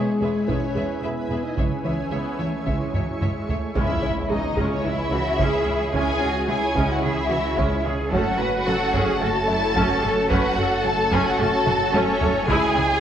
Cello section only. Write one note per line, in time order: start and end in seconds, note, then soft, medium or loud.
0.21 0.29 E2 soft
0.48 0.56 E2 soft
0.76 0.84 E2 soft
1.03 1.11 E2 soft
1.30 1.38 E2 soft
1.57 1.65 C#2 soft
1.85 1.93 C#2 soft
2.12 2.20 C#2 soft
2.40 2.48 C#2 soft
2.67 2.75 C#2 soft
2.94 3.02 C#2 soft
3.22 3.30 C#2 soft
3.49 3.57 C#2 soft
4.85 5.10 E4 medium
5.12 5.40 F#4 medium
5.40 5.94 G#4 medium
5.94 6.21 E4 medium
6.22 6.49 F#4 medium
6.49 7.03 E4 medium
7.03 7.30 G#4 medium
7.30 7.57 F#4 medium
7.57 7.84 E4 medium
7.84 8.12 G#4 medium
8.12 8.39 A4 medium
8.39 8.67 B4 medium
8.66 8.94 A4 medium
8.94 9.21 G#4 medium
9.21 9.48 F#4 medium
9.49 9.75 E4 medium
9.76 10.02 F#4 medium
10.03 10.30 A4 medium
10.30 10.57 B4 medium
10.58 11.38 A4 medium
11.39 11.94 F#4 medium
11.93 12.48 A4 medium
12.48 13.00 G#4 medium